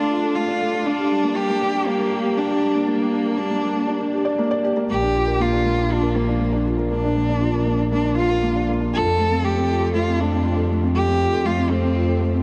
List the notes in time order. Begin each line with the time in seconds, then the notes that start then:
Already playing: A3 D4 F4 A4
0.11 F4
0.23 A4
0.35 A3 F4
0.48 D4
0.61 A3
0.73 D4
0.85 D4
0.98 G4
1.11 G3
1.23 A#3
1.36 G3 G4
1.49 A#3
1.62 D4
1.74 G4
1.87 G3 A#3
1.99 A#3
2.12 G3
2.24 A#3
2.37 D4
2.50 G4
2.62 G3
2.75 A#3
2.87 G3 A#3
3.00 A#3
3.13 D4
3.25 G4
3.37 G3 D4
3.50 A#3
3.63 G3
3.75 A#3
3.87 D4
4.00 G4
4.13 G4
4.25 D5
4.38 A#3
4.51 D5
4.64 G4
4.77 A#3
4.89 A#1 A#3 G4
5.02 D4
5.14 F4
5.27 A#4
5.39 A#3 F4
5.53 D4
5.65 A#3
5.78 D4
5.89 D4 F4
6.02 A#4
6.15 A#3
6.28 D4
6.40 A#3
6.52 D4
6.65 F4
6.78 A#4
6.90 A#3 D4
7.04 D4
7.16 A#3
7.29 D4
7.40 F4
7.54 A#4
7.66 A#3
7.79 D4
7.92 A#3 D4
8.05 D4
8.17 F4
8.30 A#4
8.42 A#3
8.55 D4
8.69 A#3
8.80 D4
8.93 F2 F4 A4
9.05 A4
9.18 A3
9.30 C4
9.42 A3 G4
9.56 C4
9.68 F4
9.81 A4
9.93 A3 F4
10.07 C4
10.20 A3 D4
10.32 C4
10.44 F4
10.57 A4
10.69 A3
10.83 C4
10.95 A3 G4
11.07 C4
11.19 F4
11.33 A4
11.45 A3 F4
11.57 C4
11.70 A3 C4
11.82 C4
11.95 F4
12.09 A4
12.21 A3
12.33 C4